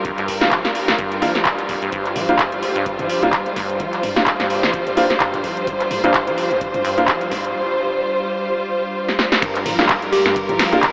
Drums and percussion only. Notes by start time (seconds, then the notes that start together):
0.05 kick, closed hi-hat
0.18 clap, closed hi-hat
0.28 kick, open hi-hat
0.41 snare
0.51 kick, clap, closed hi-hat
0.65 snare, closed hi-hat
0.75 open hi-hat
0.88 snare, closed hi-hat
0.98 kick, closed hi-hat
1.12 closed hi-hat
1.22 open hi-hat
1.35 snare, closed hi-hat
1.45 kick, clap, closed hi-hat
1.58 clap, closed hi-hat
1.69 kick, open hi-hat
1.82 closed hi-hat
1.92 kick, closed hi-hat
2.05 clap, closed hi-hat
2.16 mid tom, open hi-hat
2.29 closed hi-hat
2.39 kick, clap, closed hi-hat
2.52 closed hi-hat
2.63 open hi-hat
2.76 closed hi-hat
2.86 kick, closed hi-hat
2.99 closed hi-hat, mid tom
3.09 open hi-hat
3.23 closed hi-hat
3.33 kick, clap, closed hi-hat
3.46 closed hi-hat
3.56 kick, snare, open hi-hat
3.70 closed hi-hat
3.80 kick, closed hi-hat
3.93 clap, closed hi-hat
4.03 kick, mid tom, open hi-hat
4.16 snare, closed hi-hat
4.27 kick, clap, closed hi-hat
4.40 snare, closed hi-hat
4.50 open hi-hat
4.63 snare, closed hi-hat
4.74 kick, closed hi-hat
4.87 closed hi-hat
4.97 open hi-hat
5.10 snare, closed hi-hat
5.20 kick, clap, closed hi-hat
5.34 clap, closed hi-hat, mid tom
5.44 kick, open hi-hat
5.57 closed hi-hat
5.67 kick, closed hi-hat
5.80 clap, closed hi-hat
5.91 mid tom, open hi-hat
6.04 closed hi-hat
6.14 kick, clap, closed hi-hat
6.27 closed hi-hat
6.38 open hi-hat
6.51 closed hi-hat
6.61 kick, closed hi-hat
6.74 closed hi-hat, mid tom
6.85 open hi-hat
6.98 closed hi-hat
7.08 kick, clap, closed hi-hat
7.21 closed hi-hat
7.31 kick, snare, open hi-hat
7.45 closed hi-hat
9.09 snare
9.19 snare
9.32 snare
9.42 finger snap, kick, closed hi-hat, ride
9.55 clap, closed hi-hat
9.66 mid tom, open hi-hat, ride
9.79 snare, closed hi-hat
9.89 kick, clap, closed hi-hat, ride
10.02 closed hi-hat
10.13 open hi-hat, ride
10.26 finger snap, snare, closed hi-hat
10.36 kick, closed hi-hat, ride
10.49 closed hi-hat, mid tom
10.59 finger snap, snare, open hi-hat, ride
10.73 closed hi-hat
10.83 kick, clap, closed hi-hat, ride